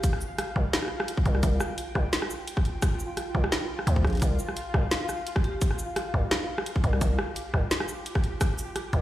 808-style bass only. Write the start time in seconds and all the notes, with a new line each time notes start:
0.56 C2
1.26 C2
1.43 C2
1.95 C2
3.35 C2
3.87 D2
4.04 A#1
4.22 C2
4.74 C2
6.14 C2
6.84 C2
7.01 C2
7.54 C2
8.93 C2